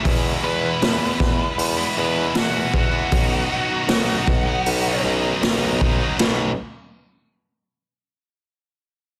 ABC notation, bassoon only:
X:1
M:4/4
L:1/8
Q:1/4=78
K:B
V:1 name="Bassoon" clef=bass
E,, E,, E,, E,, E,, E,, E,, E,, | B,,, z B,,, B,,, B,,, B,,, B,,,2 | B,,, z6 z |]